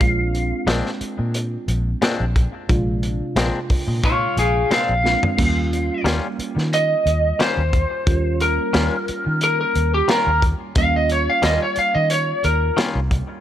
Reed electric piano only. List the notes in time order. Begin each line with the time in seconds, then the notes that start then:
0.00 G#3 C4 D4 F4
2.69 C3 G#3 D4 F4
5.04 G#3 C4 D4 F4
5.37 G3 A#3 C#4 F4
8.06 G3 A#3 C#4 F4
10.76 G3 A#3 C#4 F4